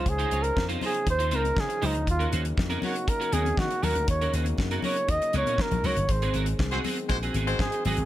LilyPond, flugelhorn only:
\new Staff \with { instrumentName = "Flugelhorn" } { \time 4/4 \key ees \dorian \tempo 4 = 119 \tuplet 3/2 { aes'4 bes'8 } r8 aes'8 c''8 bes'8 aes'8 ees'8 | f'8 r4 ges'8 bes'8 aes'8 ges'8 bes'8 | des''8 r4 des''8 ees''8 des''8 bes'8 des''8 | c''8 r2 r8 aes'8 aes'8 | }